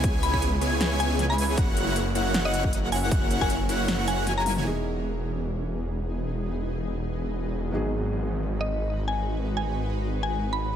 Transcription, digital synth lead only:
X:1
M:4/4
L:1/16
Q:"Swing 16ths" 1/4=156
K:Elyd
V:1 name="Digital synth lead"
g3 g z2 g3 g3 g4 | f3 f z2 f3 f3 f4 | f3 f z2 f3 f3 g4 | z16 |
z16 | z16 | z16 |]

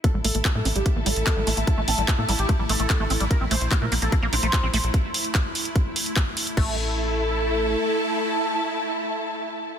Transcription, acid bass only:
X:1
M:4/4
L:1/16
Q:1/4=147
K:Bblyd
V:1 name="Acid bass"
A, G, A, A, A, A, C G, z B, G, z A, G, A, A, | A, A, C G, z B, G, z A, G, A, A, A, A, C G, | z C A, z B, A, B, B, B, B, D A, z C A, z | z16 |
A,2 z12 z2 | z16 |]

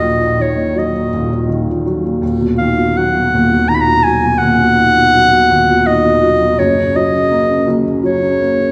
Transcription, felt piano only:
X:1
M:3/4
L:1/16
Q:1/4=82
K:Blyd
V:1 name="Felt piano" clef=bass
[D,,,A,,,D,,A,,D,F,] A,, D, A,, F, A,, [D,,,D,,] A,, D, A,, F, A,, | [D,,,D,,] B,, D, B,, F, B,, [D,,,D,,] B,, D, B,, F, B,, | [D,,,D,,] B,, D, B,, F, B,, [D,,,D,,] B,, D, B,, F, B,, | [F,,,F,,] C, F, C, A, C, [F,,,F,,] C, F, C, A, C, |]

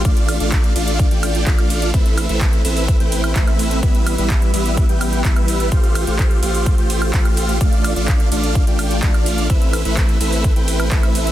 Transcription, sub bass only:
X:1
M:4/4
L:1/16
Q:1/4=127
K:Am
V:1 name="Sub bass" clef=bass
A,,,3 A,,,3 A,,,3 A,,,3 A,,,4 | A,,,3 A,,,3 A,,,3 A,,,3 A,,,4 | A,,,3 A,,,3 A,,,3 A,,,3 A,,,4 | A,,,3 A,,,3 A,,,3 A,,,3 A,,,4 |
A,,,3 A,,,3 A,,,3 A,,,3 A,,,4 | A,,,3 A,,,3 A,,,3 A,,,3 A,,,4 |]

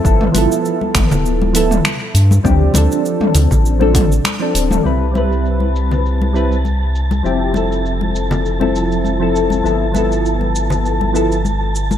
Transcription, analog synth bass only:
X:1
M:4/4
L:1/16
Q:"Swing 16ths" 1/4=100
K:C
V:1 name="Analog synth bass" clef=bass
G,,,2 G,,, z3 G,,, D,,,4- D,,, z2 G,,2 | D,,2 D,, z3 D,, A,,,4- A,,, z2 D,,,2 | C,,16 | F,,,16 |
G,,,16 |]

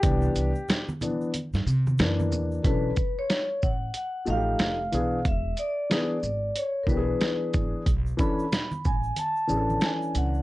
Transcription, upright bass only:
X:1
M:4/4
L:1/16
Q:"Swing 16ths" 1/4=92
K:Bdor
V:1 name="Upright bass" clef=bass
=C,,2 C,, z6 =G,, =C,2 F,,2 E,,2 | B,,,2 z4 A,,,2 z2 A,,,2 =F,,,2 B,,,2 | E,,,2 z4 G,,,2 z2 B,,,2 z2 G,,, z | B,,,2 z4 A,,,2 z2 A,,,2 z2 C,,2 |]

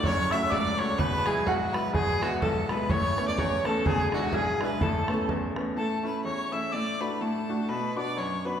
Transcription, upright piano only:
X:1
M:2/4
L:1/8
Q:"Swing" 1/4=126
K:A
V:1 name="Upright piano"
[F,,,F,,] [A,CF] C,, [A,CF] | [E,,,E,,] [F,G,E] B,,, [F,G,E] | [E,,,E,,] [G,B,E] B,,, [G,B,E] | [A,,,A,,] [A,B,C] E,, [A,B,C] |
[E,,,E,,] [G,DE] B,,, [G,DE] | [A,,,A,,] [A,B,C] E,, [A,B,C] | A,, [A,CE] E,, [A,CE] | A,, [A,DF] A,, [A,DF] |
B,, [B,DF] F,, [B,DF] |]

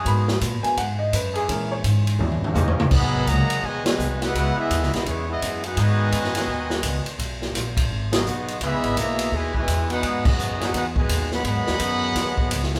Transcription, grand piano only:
X:1
M:4/4
L:1/8
Q:"Swing" 1/4=169
K:G#m
V:1 name="Grand piano"
b3 g f d B G | A c z6 | z8 | z8 |
z8 | z8 | z8 | z8 |
z8 |]
V:2 name="Grand piano"
[F,A,B,]3 [F,A,B,] z4 | [E,G,C]4 [E,=G,C]4 | z8 | z8 |
z8 | z8 | z8 | z8 |
z8 |]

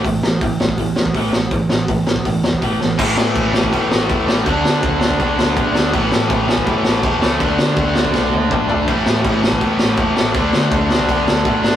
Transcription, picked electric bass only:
X:1
M:4/4
L:1/8
Q:1/4=163
K:Dlyd
V:1 name="Picked electric bass" clef=bass
A,,, A,,, A,,, A,,, A,,, F,,, A,,, A,,, | A,,, A,,, A,,, A,,, A,,, E,,, A,,, A,,, | A,,, A,, A,,,2 z A,,, E,,, A,,, | D,, D, D,,2 B,,, D,, A,,, D,, |
A,,, A,, A,,,2 F,,, A,,, E,,, C,, | D,, D, D,,2 B,,, D,, A,,, B,,, | A,,, A,, A,,,2 z A,,, E,,, A,,, | D,, D, D,,2 B,,, D,, A,,, G,,, |]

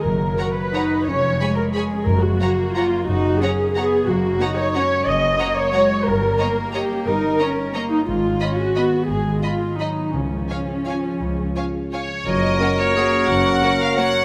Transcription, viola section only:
X:1
M:3/4
L:1/8
Q:1/4=176
K:Gb
V:1 name="Viola section"
B3 c3 | d3 B A2 | B G3 F2 | G2 A2 A2 |
[K:F#] F3 c c2 | d3 c3 | A4 =G2 | A4 z D |
E3 F3 | G2 E2 D2 | C6- | C4- C z |
z2 [A,C]2 [A,C]2 | z2 [A,C]2 [A,C]2 |]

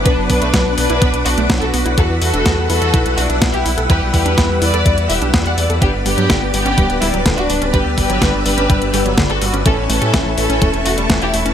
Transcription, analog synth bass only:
X:1
M:4/4
L:1/16
Q:1/4=125
K:Edor
V:1 name="Analog synth bass" clef=bass
B,,, F,,, B,,, B,,, B,,, B,,, B,,, B,,, B,,, B,,, B,,, B,,, B,,, B,,, B,,, B,,, | E,, E,, E,, E,,, E,, E,, E,, E,, B,,, B,,, B,,, B,,, B,,, B,,, B,,, B,,, | E,, B,,, E,, E,, E,, E,, E,, E,, E,, E,, E,,, B,,, E,, E,, E,, E,, | G,,, G,,, G,,, G,, G,,, G,,, G,,, G,,, D,,, D,,, D,,, D,,, D,,, D,,, D,,, D,,, |
G,,, D,, G,,, G,,, G,,, G,,, G,,, G,,, G,,, G,,, G,,, G,,, G,,, G,,, G,,, G,,, | A,,, A,,, A,,, A,, A,,, A,,, A,,, A,,, E,,, E,,, E,,, E,,, E,,, E,,, E,,, E,,, |]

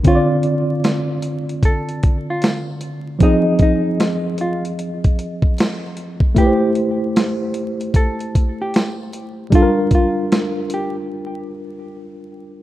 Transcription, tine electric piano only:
X:1
M:4/4
L:1/8
Q:"Swing 16ths" 1/4=76
K:Dm
V:1 name="Tine electric piano"
[D,CF^cd]8 | [F,C_A_e]8 | [A,EG=Bc]8 | [G,DFAB]8 |]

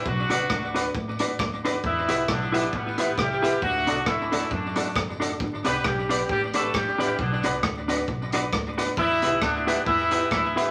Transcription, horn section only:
X:1
M:4/4
L:1/16
Q:"Swing" 1/4=134
K:Bphr
V:1 name="Horn section"
[F,DF]8 z8 | [E,B,E]4 [D,B,D]4 [G,B,]4 [G,EG]4 | [F,DF]4 [E,A,E]4 [D,A,D]4 z4 | z2 [B,GB]2 [G,DG]4 [G,DG]2 [A,FA]2 [G,DG]2 [G,EG]2 |
[D,B,D]4 z12 | [E,B,E]4 [D,B,D]4 [E,B,E]4 [E,B,E]3 [E,CE] |]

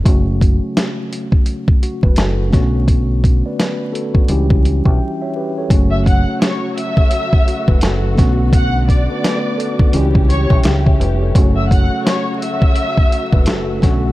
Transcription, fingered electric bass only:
X:1
M:4/4
L:1/16
Q:"Swing 16ths" 1/4=85
K:F#phr
V:1 name="Fingered electric bass" clef=bass
F,,,3 z8 E,,, F,,,2 B,,,2- | B,,,3 z4 z C,,3 B,,, z4 | F,,,3 z8 E,,, F,,,2 B,,,2- | B,,,3 z4 z C,,3 B,,, C,,2 ^E,,,2 |
F,,,3 z8 E,,, F,,,2 B,,,2 |]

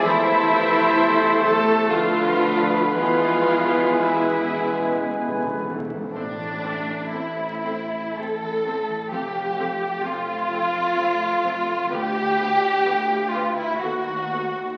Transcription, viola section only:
X:1
M:3/4
L:1/8
Q:1/4=62
K:Am
V:1 name="Viola section"
E3 A F2 | F2 E2 z2 | [CA] [CA] [CA] [CA] [CA] [CA] | [CA] [CA] [CA] [CA] [CA] [CA] |
[B,B] [B,B] [B,B] [B,B] [B,A] [B,A] |]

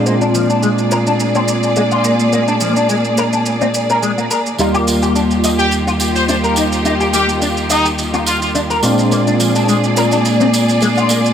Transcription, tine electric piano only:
X:1
M:4/4
L:1/8
Q:"Swing 16ths" 1/4=106
K:Bbmix
V:1 name="Tine electric piano"
[B,,A,CDF]8- | [B,,A,CDF]6- [B,,A,CDF] z | [E,,G,B,F]8- | [E,,G,B,F]6- [E,,G,B,F] [B,,A,CDF]- |
[B,,A,CDF]8 |]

